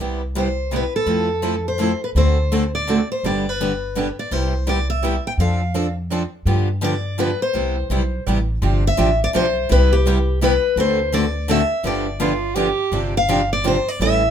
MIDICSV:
0, 0, Header, 1, 6, 480
1, 0, Start_track
1, 0, Time_signature, 3, 2, 24, 8
1, 0, Key_signature, 0, "major"
1, 0, Tempo, 359281
1, 19112, End_track
2, 0, Start_track
2, 0, Title_t, "Steel-string acoustic guitar"
2, 0, Program_c, 0, 25
2, 510, Note_on_c, 0, 72, 63
2, 988, Note_off_c, 0, 72, 0
2, 1014, Note_on_c, 0, 71, 61
2, 1275, Note_off_c, 0, 71, 0
2, 1281, Note_on_c, 0, 69, 67
2, 2239, Note_off_c, 0, 69, 0
2, 2245, Note_on_c, 0, 72, 62
2, 2675, Note_off_c, 0, 72, 0
2, 2724, Note_on_c, 0, 71, 60
2, 2791, Note_off_c, 0, 71, 0
2, 2907, Note_on_c, 0, 72, 69
2, 3612, Note_off_c, 0, 72, 0
2, 3672, Note_on_c, 0, 74, 71
2, 4108, Note_off_c, 0, 74, 0
2, 4164, Note_on_c, 0, 72, 65
2, 4323, Note_off_c, 0, 72, 0
2, 4356, Note_on_c, 0, 74, 82
2, 4663, Note_off_c, 0, 74, 0
2, 4663, Note_on_c, 0, 71, 66
2, 5597, Note_off_c, 0, 71, 0
2, 5602, Note_on_c, 0, 74, 61
2, 5774, Note_off_c, 0, 74, 0
2, 5774, Note_on_c, 0, 72, 75
2, 6260, Note_off_c, 0, 72, 0
2, 6267, Note_on_c, 0, 74, 73
2, 6525, Note_off_c, 0, 74, 0
2, 6543, Note_on_c, 0, 76, 74
2, 6984, Note_off_c, 0, 76, 0
2, 7042, Note_on_c, 0, 79, 76
2, 7108, Note_off_c, 0, 79, 0
2, 7214, Note_on_c, 0, 77, 71
2, 7925, Note_off_c, 0, 77, 0
2, 9144, Note_on_c, 0, 74, 89
2, 9578, Note_off_c, 0, 74, 0
2, 9618, Note_on_c, 0, 71, 78
2, 9881, Note_off_c, 0, 71, 0
2, 9916, Note_on_c, 0, 72, 68
2, 10997, Note_off_c, 0, 72, 0
2, 11855, Note_on_c, 0, 76, 88
2, 12280, Note_off_c, 0, 76, 0
2, 12343, Note_on_c, 0, 74, 83
2, 12410, Note_off_c, 0, 74, 0
2, 12504, Note_on_c, 0, 72, 89
2, 12938, Note_off_c, 0, 72, 0
2, 12984, Note_on_c, 0, 71, 90
2, 13261, Note_on_c, 0, 67, 77
2, 13271, Note_off_c, 0, 71, 0
2, 13877, Note_off_c, 0, 67, 0
2, 13946, Note_on_c, 0, 71, 83
2, 14379, Note_off_c, 0, 71, 0
2, 14427, Note_on_c, 0, 72, 81
2, 14859, Note_off_c, 0, 72, 0
2, 14884, Note_on_c, 0, 74, 90
2, 15327, Note_off_c, 0, 74, 0
2, 15377, Note_on_c, 0, 76, 88
2, 15851, Note_off_c, 0, 76, 0
2, 15856, Note_on_c, 0, 74, 73
2, 17044, Note_off_c, 0, 74, 0
2, 17598, Note_on_c, 0, 77, 96
2, 18030, Note_off_c, 0, 77, 0
2, 18072, Note_on_c, 0, 74, 80
2, 18252, Note_off_c, 0, 74, 0
2, 18271, Note_on_c, 0, 72, 85
2, 18549, Note_off_c, 0, 72, 0
2, 18549, Note_on_c, 0, 74, 83
2, 18724, Note_off_c, 0, 74, 0
2, 18730, Note_on_c, 0, 76, 87
2, 19112, Note_off_c, 0, 76, 0
2, 19112, End_track
3, 0, Start_track
3, 0, Title_t, "Soprano saxophone"
3, 0, Program_c, 1, 64
3, 16305, Note_on_c, 1, 65, 81
3, 16766, Note_on_c, 1, 67, 99
3, 16786, Note_off_c, 1, 65, 0
3, 17406, Note_off_c, 1, 67, 0
3, 19112, End_track
4, 0, Start_track
4, 0, Title_t, "Steel-string acoustic guitar"
4, 0, Program_c, 2, 25
4, 18716, Note_on_c, 2, 55, 60
4, 18722, Note_on_c, 2, 64, 65
4, 18737, Note_on_c, 2, 69, 68
4, 18991, Note_off_c, 2, 55, 0
4, 18994, Note_off_c, 2, 64, 0
4, 19002, Note_off_c, 2, 69, 0
4, 19112, End_track
5, 0, Start_track
5, 0, Title_t, "Steel-string acoustic guitar"
5, 0, Program_c, 3, 25
5, 0, Note_on_c, 3, 48, 47
5, 0, Note_on_c, 3, 55, 52
5, 10, Note_on_c, 3, 59, 51
5, 13, Note_on_c, 3, 64, 56
5, 13, Note_on_c, 3, 67, 57
5, 274, Note_off_c, 3, 55, 0
5, 275, Note_off_c, 3, 48, 0
5, 280, Note_off_c, 3, 59, 0
5, 282, Note_off_c, 3, 64, 0
5, 282, Note_off_c, 3, 67, 0
5, 472, Note_on_c, 3, 55, 71
5, 473, Note_on_c, 3, 48, 69
5, 484, Note_on_c, 3, 59, 71
5, 485, Note_on_c, 3, 64, 79
5, 486, Note_on_c, 3, 67, 71
5, 621, Note_off_c, 3, 48, 0
5, 621, Note_off_c, 3, 55, 0
5, 627, Note_off_c, 3, 59, 0
5, 628, Note_off_c, 3, 64, 0
5, 628, Note_off_c, 3, 67, 0
5, 951, Note_on_c, 3, 48, 60
5, 954, Note_on_c, 3, 55, 57
5, 960, Note_on_c, 3, 67, 68
5, 966, Note_on_c, 3, 59, 63
5, 966, Note_on_c, 3, 64, 63
5, 1101, Note_off_c, 3, 48, 0
5, 1102, Note_off_c, 3, 55, 0
5, 1105, Note_off_c, 3, 67, 0
5, 1108, Note_off_c, 3, 59, 0
5, 1108, Note_off_c, 3, 64, 0
5, 1420, Note_on_c, 3, 53, 52
5, 1425, Note_on_c, 3, 57, 54
5, 1426, Note_on_c, 3, 60, 57
5, 1430, Note_on_c, 3, 69, 54
5, 1434, Note_on_c, 3, 64, 59
5, 1706, Note_off_c, 3, 53, 0
5, 1708, Note_off_c, 3, 57, 0
5, 1708, Note_off_c, 3, 60, 0
5, 1710, Note_off_c, 3, 69, 0
5, 1712, Note_off_c, 3, 64, 0
5, 1900, Note_on_c, 3, 53, 67
5, 1904, Note_on_c, 3, 60, 72
5, 1906, Note_on_c, 3, 57, 66
5, 1910, Note_on_c, 3, 64, 75
5, 1913, Note_on_c, 3, 69, 80
5, 2055, Note_off_c, 3, 53, 0
5, 2057, Note_off_c, 3, 60, 0
5, 2059, Note_off_c, 3, 57, 0
5, 2060, Note_off_c, 3, 64, 0
5, 2062, Note_off_c, 3, 69, 0
5, 2378, Note_on_c, 3, 53, 63
5, 2390, Note_on_c, 3, 60, 61
5, 2391, Note_on_c, 3, 57, 72
5, 2391, Note_on_c, 3, 64, 75
5, 2399, Note_on_c, 3, 69, 78
5, 2535, Note_off_c, 3, 53, 0
5, 2541, Note_off_c, 3, 57, 0
5, 2541, Note_off_c, 3, 60, 0
5, 2541, Note_off_c, 3, 64, 0
5, 2545, Note_off_c, 3, 69, 0
5, 2881, Note_on_c, 3, 57, 53
5, 2885, Note_on_c, 3, 50, 58
5, 2893, Note_on_c, 3, 60, 57
5, 2898, Note_on_c, 3, 69, 62
5, 2900, Note_on_c, 3, 66, 59
5, 3156, Note_off_c, 3, 57, 0
5, 3158, Note_off_c, 3, 50, 0
5, 3162, Note_off_c, 3, 60, 0
5, 3165, Note_off_c, 3, 69, 0
5, 3166, Note_off_c, 3, 66, 0
5, 3362, Note_on_c, 3, 57, 73
5, 3364, Note_on_c, 3, 50, 69
5, 3370, Note_on_c, 3, 60, 78
5, 3374, Note_on_c, 3, 66, 77
5, 3379, Note_on_c, 3, 69, 78
5, 3507, Note_off_c, 3, 57, 0
5, 3508, Note_off_c, 3, 50, 0
5, 3510, Note_off_c, 3, 60, 0
5, 3513, Note_off_c, 3, 66, 0
5, 3515, Note_off_c, 3, 69, 0
5, 3841, Note_on_c, 3, 57, 65
5, 3842, Note_on_c, 3, 50, 64
5, 3851, Note_on_c, 3, 60, 70
5, 3853, Note_on_c, 3, 66, 72
5, 3858, Note_on_c, 3, 69, 72
5, 3986, Note_off_c, 3, 57, 0
5, 3987, Note_off_c, 3, 50, 0
5, 3991, Note_off_c, 3, 60, 0
5, 3992, Note_off_c, 3, 66, 0
5, 3995, Note_off_c, 3, 69, 0
5, 4333, Note_on_c, 3, 50, 52
5, 4334, Note_on_c, 3, 59, 63
5, 4336, Note_on_c, 3, 55, 56
5, 4340, Note_on_c, 3, 62, 49
5, 4343, Note_on_c, 3, 67, 56
5, 4603, Note_off_c, 3, 50, 0
5, 4603, Note_off_c, 3, 59, 0
5, 4604, Note_off_c, 3, 55, 0
5, 4606, Note_off_c, 3, 62, 0
5, 4608, Note_off_c, 3, 67, 0
5, 4820, Note_on_c, 3, 50, 67
5, 4821, Note_on_c, 3, 55, 66
5, 4822, Note_on_c, 3, 59, 78
5, 4833, Note_on_c, 3, 62, 69
5, 4840, Note_on_c, 3, 67, 80
5, 4956, Note_off_c, 3, 50, 0
5, 4956, Note_off_c, 3, 55, 0
5, 4957, Note_off_c, 3, 59, 0
5, 4962, Note_off_c, 3, 62, 0
5, 4966, Note_off_c, 3, 67, 0
5, 5282, Note_on_c, 3, 50, 65
5, 5289, Note_on_c, 3, 59, 68
5, 5293, Note_on_c, 3, 55, 67
5, 5301, Note_on_c, 3, 62, 67
5, 5305, Note_on_c, 3, 67, 74
5, 5427, Note_off_c, 3, 50, 0
5, 5430, Note_off_c, 3, 59, 0
5, 5432, Note_off_c, 3, 55, 0
5, 5436, Note_off_c, 3, 62, 0
5, 5438, Note_off_c, 3, 67, 0
5, 5762, Note_on_c, 3, 48, 60
5, 5766, Note_on_c, 3, 59, 57
5, 5770, Note_on_c, 3, 55, 54
5, 5772, Note_on_c, 3, 64, 57
5, 5783, Note_on_c, 3, 67, 61
5, 6037, Note_off_c, 3, 48, 0
5, 6039, Note_off_c, 3, 59, 0
5, 6041, Note_off_c, 3, 55, 0
5, 6042, Note_off_c, 3, 64, 0
5, 6047, Note_off_c, 3, 67, 0
5, 6236, Note_on_c, 3, 55, 70
5, 6237, Note_on_c, 3, 48, 78
5, 6241, Note_on_c, 3, 64, 72
5, 6242, Note_on_c, 3, 59, 75
5, 6250, Note_on_c, 3, 67, 73
5, 6384, Note_off_c, 3, 48, 0
5, 6384, Note_off_c, 3, 55, 0
5, 6386, Note_off_c, 3, 59, 0
5, 6386, Note_off_c, 3, 64, 0
5, 6391, Note_off_c, 3, 67, 0
5, 6721, Note_on_c, 3, 48, 69
5, 6732, Note_on_c, 3, 59, 71
5, 6737, Note_on_c, 3, 55, 64
5, 6742, Note_on_c, 3, 64, 73
5, 6743, Note_on_c, 3, 67, 81
5, 6866, Note_off_c, 3, 48, 0
5, 6872, Note_off_c, 3, 59, 0
5, 6874, Note_off_c, 3, 55, 0
5, 6877, Note_off_c, 3, 64, 0
5, 6877, Note_off_c, 3, 67, 0
5, 7217, Note_on_c, 3, 53, 56
5, 7223, Note_on_c, 3, 60, 57
5, 7228, Note_on_c, 3, 62, 54
5, 7231, Note_on_c, 3, 69, 64
5, 7484, Note_off_c, 3, 53, 0
5, 7487, Note_off_c, 3, 60, 0
5, 7490, Note_off_c, 3, 62, 0
5, 7491, Note_off_c, 3, 69, 0
5, 7673, Note_on_c, 3, 53, 71
5, 7682, Note_on_c, 3, 60, 77
5, 7692, Note_on_c, 3, 69, 77
5, 7693, Note_on_c, 3, 62, 69
5, 7822, Note_off_c, 3, 53, 0
5, 7827, Note_off_c, 3, 60, 0
5, 7832, Note_off_c, 3, 62, 0
5, 7832, Note_off_c, 3, 69, 0
5, 8170, Note_on_c, 3, 60, 71
5, 8171, Note_on_c, 3, 53, 65
5, 8179, Note_on_c, 3, 62, 74
5, 8185, Note_on_c, 3, 69, 77
5, 8311, Note_off_c, 3, 53, 0
5, 8311, Note_off_c, 3, 60, 0
5, 8315, Note_off_c, 3, 62, 0
5, 8318, Note_off_c, 3, 69, 0
5, 8638, Note_on_c, 3, 50, 54
5, 8641, Note_on_c, 3, 53, 63
5, 8642, Note_on_c, 3, 59, 65
5, 8647, Note_on_c, 3, 62, 60
5, 8650, Note_on_c, 3, 67, 60
5, 8915, Note_off_c, 3, 50, 0
5, 8916, Note_off_c, 3, 53, 0
5, 8917, Note_off_c, 3, 59, 0
5, 8919, Note_off_c, 3, 62, 0
5, 8921, Note_off_c, 3, 67, 0
5, 9101, Note_on_c, 3, 53, 77
5, 9107, Note_on_c, 3, 50, 64
5, 9108, Note_on_c, 3, 59, 73
5, 9114, Note_on_c, 3, 67, 76
5, 9117, Note_on_c, 3, 62, 85
5, 9256, Note_off_c, 3, 53, 0
5, 9259, Note_off_c, 3, 50, 0
5, 9259, Note_off_c, 3, 59, 0
5, 9262, Note_off_c, 3, 67, 0
5, 9264, Note_off_c, 3, 62, 0
5, 9591, Note_on_c, 3, 50, 61
5, 9601, Note_on_c, 3, 53, 73
5, 9601, Note_on_c, 3, 59, 70
5, 9601, Note_on_c, 3, 62, 71
5, 9607, Note_on_c, 3, 67, 70
5, 9741, Note_off_c, 3, 50, 0
5, 9746, Note_off_c, 3, 53, 0
5, 9746, Note_off_c, 3, 59, 0
5, 9746, Note_off_c, 3, 62, 0
5, 9749, Note_off_c, 3, 67, 0
5, 10065, Note_on_c, 3, 48, 52
5, 10072, Note_on_c, 3, 55, 52
5, 10083, Note_on_c, 3, 59, 52
5, 10083, Note_on_c, 3, 64, 60
5, 10087, Note_on_c, 3, 67, 58
5, 10348, Note_off_c, 3, 48, 0
5, 10352, Note_off_c, 3, 55, 0
5, 10357, Note_off_c, 3, 59, 0
5, 10357, Note_off_c, 3, 64, 0
5, 10359, Note_off_c, 3, 67, 0
5, 10554, Note_on_c, 3, 48, 72
5, 10566, Note_on_c, 3, 55, 77
5, 10568, Note_on_c, 3, 64, 76
5, 10577, Note_on_c, 3, 59, 71
5, 10581, Note_on_c, 3, 67, 73
5, 10703, Note_off_c, 3, 48, 0
5, 10709, Note_off_c, 3, 55, 0
5, 10709, Note_off_c, 3, 64, 0
5, 10714, Note_off_c, 3, 59, 0
5, 10716, Note_off_c, 3, 67, 0
5, 11055, Note_on_c, 3, 48, 61
5, 11062, Note_on_c, 3, 55, 74
5, 11066, Note_on_c, 3, 59, 66
5, 11069, Note_on_c, 3, 64, 77
5, 11077, Note_on_c, 3, 67, 73
5, 11193, Note_off_c, 3, 48, 0
5, 11196, Note_off_c, 3, 55, 0
5, 11199, Note_off_c, 3, 59, 0
5, 11200, Note_off_c, 3, 64, 0
5, 11204, Note_off_c, 3, 67, 0
5, 11514, Note_on_c, 3, 60, 59
5, 11516, Note_on_c, 3, 48, 57
5, 11516, Note_on_c, 3, 53, 57
5, 11528, Note_on_c, 3, 62, 63
5, 11532, Note_on_c, 3, 67, 72
5, 11793, Note_off_c, 3, 53, 0
5, 11793, Note_off_c, 3, 60, 0
5, 11794, Note_off_c, 3, 48, 0
5, 11799, Note_off_c, 3, 62, 0
5, 11801, Note_off_c, 3, 67, 0
5, 11987, Note_on_c, 3, 48, 72
5, 11987, Note_on_c, 3, 53, 82
5, 11992, Note_on_c, 3, 60, 79
5, 12005, Note_on_c, 3, 67, 89
5, 12009, Note_on_c, 3, 62, 85
5, 12139, Note_off_c, 3, 48, 0
5, 12139, Note_off_c, 3, 53, 0
5, 12141, Note_off_c, 3, 60, 0
5, 12148, Note_off_c, 3, 67, 0
5, 12150, Note_off_c, 3, 62, 0
5, 12469, Note_on_c, 3, 48, 73
5, 12469, Note_on_c, 3, 53, 73
5, 12481, Note_on_c, 3, 60, 77
5, 12487, Note_on_c, 3, 62, 80
5, 12489, Note_on_c, 3, 67, 78
5, 12620, Note_off_c, 3, 48, 0
5, 12620, Note_off_c, 3, 53, 0
5, 12626, Note_off_c, 3, 60, 0
5, 12629, Note_off_c, 3, 62, 0
5, 12630, Note_off_c, 3, 67, 0
5, 12947, Note_on_c, 3, 48, 58
5, 12950, Note_on_c, 3, 55, 54
5, 12951, Note_on_c, 3, 59, 55
5, 12952, Note_on_c, 3, 64, 67
5, 12957, Note_on_c, 3, 67, 66
5, 13229, Note_off_c, 3, 48, 0
5, 13230, Note_off_c, 3, 55, 0
5, 13231, Note_off_c, 3, 59, 0
5, 13231, Note_off_c, 3, 64, 0
5, 13234, Note_off_c, 3, 67, 0
5, 13448, Note_on_c, 3, 48, 79
5, 13452, Note_on_c, 3, 59, 81
5, 13453, Note_on_c, 3, 55, 83
5, 13458, Note_on_c, 3, 67, 85
5, 13463, Note_on_c, 3, 64, 81
5, 13589, Note_off_c, 3, 48, 0
5, 13591, Note_off_c, 3, 59, 0
5, 13592, Note_off_c, 3, 55, 0
5, 13594, Note_off_c, 3, 67, 0
5, 13596, Note_off_c, 3, 64, 0
5, 13913, Note_on_c, 3, 48, 73
5, 13918, Note_on_c, 3, 64, 75
5, 13924, Note_on_c, 3, 59, 81
5, 13926, Note_on_c, 3, 55, 78
5, 13931, Note_on_c, 3, 67, 88
5, 14061, Note_off_c, 3, 48, 0
5, 14064, Note_off_c, 3, 64, 0
5, 14067, Note_off_c, 3, 59, 0
5, 14068, Note_off_c, 3, 55, 0
5, 14070, Note_off_c, 3, 67, 0
5, 14392, Note_on_c, 3, 57, 57
5, 14392, Note_on_c, 3, 60, 60
5, 14393, Note_on_c, 3, 50, 60
5, 14396, Note_on_c, 3, 66, 66
5, 14410, Note_on_c, 3, 69, 74
5, 14671, Note_off_c, 3, 50, 0
5, 14671, Note_off_c, 3, 57, 0
5, 14671, Note_off_c, 3, 60, 0
5, 14673, Note_off_c, 3, 66, 0
5, 14680, Note_off_c, 3, 69, 0
5, 14862, Note_on_c, 3, 50, 75
5, 14874, Note_on_c, 3, 57, 72
5, 14874, Note_on_c, 3, 66, 81
5, 14877, Note_on_c, 3, 60, 78
5, 14878, Note_on_c, 3, 69, 84
5, 15016, Note_off_c, 3, 50, 0
5, 15021, Note_off_c, 3, 66, 0
5, 15022, Note_off_c, 3, 57, 0
5, 15023, Note_off_c, 3, 60, 0
5, 15023, Note_off_c, 3, 69, 0
5, 15340, Note_on_c, 3, 50, 86
5, 15345, Note_on_c, 3, 57, 83
5, 15351, Note_on_c, 3, 60, 73
5, 15352, Note_on_c, 3, 69, 77
5, 15357, Note_on_c, 3, 66, 84
5, 15494, Note_off_c, 3, 50, 0
5, 15497, Note_off_c, 3, 57, 0
5, 15500, Note_off_c, 3, 60, 0
5, 15501, Note_off_c, 3, 69, 0
5, 15503, Note_off_c, 3, 66, 0
5, 15810, Note_on_c, 3, 50, 58
5, 15819, Note_on_c, 3, 53, 64
5, 15819, Note_on_c, 3, 59, 72
5, 15822, Note_on_c, 3, 62, 61
5, 15836, Note_on_c, 3, 67, 66
5, 16099, Note_off_c, 3, 50, 0
5, 16104, Note_off_c, 3, 53, 0
5, 16104, Note_off_c, 3, 59, 0
5, 16105, Note_off_c, 3, 62, 0
5, 16112, Note_off_c, 3, 67, 0
5, 16295, Note_on_c, 3, 53, 77
5, 16296, Note_on_c, 3, 59, 91
5, 16301, Note_on_c, 3, 50, 74
5, 16307, Note_on_c, 3, 62, 80
5, 16315, Note_on_c, 3, 67, 81
5, 16452, Note_off_c, 3, 53, 0
5, 16452, Note_off_c, 3, 59, 0
5, 16455, Note_off_c, 3, 50, 0
5, 16458, Note_off_c, 3, 62, 0
5, 16462, Note_off_c, 3, 67, 0
5, 16774, Note_on_c, 3, 50, 61
5, 16775, Note_on_c, 3, 59, 81
5, 16778, Note_on_c, 3, 53, 75
5, 16779, Note_on_c, 3, 67, 77
5, 16782, Note_on_c, 3, 62, 80
5, 16931, Note_off_c, 3, 50, 0
5, 16931, Note_off_c, 3, 59, 0
5, 16933, Note_off_c, 3, 53, 0
5, 16934, Note_off_c, 3, 67, 0
5, 16935, Note_off_c, 3, 62, 0
5, 17257, Note_on_c, 3, 48, 59
5, 17267, Note_on_c, 3, 53, 54
5, 17270, Note_on_c, 3, 60, 63
5, 17271, Note_on_c, 3, 62, 67
5, 17271, Note_on_c, 3, 67, 63
5, 17542, Note_off_c, 3, 48, 0
5, 17547, Note_off_c, 3, 53, 0
5, 17549, Note_off_c, 3, 60, 0
5, 17549, Note_off_c, 3, 62, 0
5, 17549, Note_off_c, 3, 67, 0
5, 17749, Note_on_c, 3, 48, 77
5, 17751, Note_on_c, 3, 53, 89
5, 17752, Note_on_c, 3, 60, 81
5, 17757, Note_on_c, 3, 62, 90
5, 17761, Note_on_c, 3, 67, 89
5, 17898, Note_off_c, 3, 48, 0
5, 17899, Note_off_c, 3, 53, 0
5, 17899, Note_off_c, 3, 60, 0
5, 17902, Note_off_c, 3, 62, 0
5, 17904, Note_off_c, 3, 67, 0
5, 18221, Note_on_c, 3, 48, 69
5, 18226, Note_on_c, 3, 53, 77
5, 18231, Note_on_c, 3, 60, 82
5, 18239, Note_on_c, 3, 67, 72
5, 18240, Note_on_c, 3, 62, 68
5, 18374, Note_off_c, 3, 48, 0
5, 18376, Note_off_c, 3, 53, 0
5, 18379, Note_off_c, 3, 60, 0
5, 18383, Note_off_c, 3, 62, 0
5, 18383, Note_off_c, 3, 67, 0
5, 18709, Note_on_c, 3, 49, 65
5, 18715, Note_on_c, 3, 52, 67
5, 18721, Note_on_c, 3, 57, 64
5, 18723, Note_on_c, 3, 61, 65
5, 18732, Note_on_c, 3, 67, 61
5, 18987, Note_off_c, 3, 49, 0
5, 18990, Note_off_c, 3, 52, 0
5, 18993, Note_off_c, 3, 57, 0
5, 18994, Note_off_c, 3, 61, 0
5, 18999, Note_off_c, 3, 67, 0
5, 19112, End_track
6, 0, Start_track
6, 0, Title_t, "Upright bass"
6, 0, Program_c, 4, 32
6, 0, Note_on_c, 4, 36, 61
6, 1141, Note_off_c, 4, 36, 0
6, 1419, Note_on_c, 4, 41, 65
6, 2579, Note_off_c, 4, 41, 0
6, 2872, Note_on_c, 4, 38, 71
6, 4027, Note_off_c, 4, 38, 0
6, 4321, Note_on_c, 4, 31, 65
6, 5472, Note_off_c, 4, 31, 0
6, 5761, Note_on_c, 4, 36, 71
6, 6912, Note_off_c, 4, 36, 0
6, 7183, Note_on_c, 4, 41, 71
6, 8341, Note_off_c, 4, 41, 0
6, 8624, Note_on_c, 4, 43, 74
6, 9782, Note_off_c, 4, 43, 0
6, 10078, Note_on_c, 4, 36, 66
6, 10462, Note_off_c, 4, 36, 0
6, 10549, Note_on_c, 4, 35, 67
6, 10961, Note_off_c, 4, 35, 0
6, 11047, Note_on_c, 4, 33, 68
6, 11451, Note_off_c, 4, 33, 0
6, 11512, Note_on_c, 4, 31, 84
6, 11899, Note_off_c, 4, 31, 0
6, 11999, Note_on_c, 4, 33, 64
6, 12406, Note_off_c, 4, 33, 0
6, 12491, Note_on_c, 4, 35, 63
6, 12893, Note_off_c, 4, 35, 0
6, 12972, Note_on_c, 4, 36, 81
6, 14117, Note_off_c, 4, 36, 0
6, 14376, Note_on_c, 4, 38, 78
6, 15536, Note_off_c, 4, 38, 0
6, 15814, Note_on_c, 4, 31, 75
6, 16974, Note_off_c, 4, 31, 0
6, 17255, Note_on_c, 4, 31, 79
6, 18414, Note_off_c, 4, 31, 0
6, 18699, Note_on_c, 4, 33, 80
6, 19112, Note_off_c, 4, 33, 0
6, 19112, End_track
0, 0, End_of_file